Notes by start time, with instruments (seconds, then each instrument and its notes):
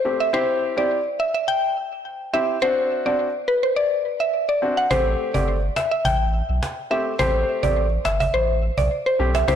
0.05 grand piano A3 C4 G4
0.20 synth pluck E5
0.33 grand piano C4 E4 G4, synth pluck C5
0.77 grand piano C4 E4 G4, synth pluck D5
1.20 synth pluck E5
1.34 synth pluck E5
1.48 synth pluck G5
2.33 grand piano C4 E4 G4, synth pluck E5
2.62 grand piano C4 D4 F#4, synth pluck C5
3.06 grand piano C4 D4 F#4, synth pluck D5
3.48 synth pluck B4
3.63 synth pluck C5
3.76 synth pluck D5
4.20 synth pluck E5
4.49 synth pluck D5
4.62 grand piano C4 D4 F#4
4.77 synth pluck F#5
4.91 sub bass A1, grand piano A3 C4 G4, synth pluck C5, cajon bass
5.34 sub bass G1, grand piano A3 C4 G4, synth pluck D5, cajon bass
5.76 synth pluck E5, cajon slap
5.91 synth pluck E5
6.05 sub bass A1, synth pluck G5, cajon bass
6.49 sub bass B1
6.63 cajon slap
6.91 grand piano A3 C4 G4, synth pluck E5
7.19 sub bass A1, grand piano A3 C4 G4, synth pluck C5, cajon bass
7.63 sub bass A1, grand piano A3 C4 G4, synth pluck D5, cajon bass
8.05 sub bass G1, synth pluck E5, cajon slap
8.20 synth pluck E5, cajon bass
8.34 sub bass A1, synth pluck C5
8.78 sub bass B1, synth pluck D5, cajon bass
9.06 synth pluck C5
9.19 sub bass B1, grand piano A3 C4 G4
9.35 synth pluck E5, cajon slap
9.48 sub bass C2, grand piano C4 E4 G4, synth pluck C5, cajon bass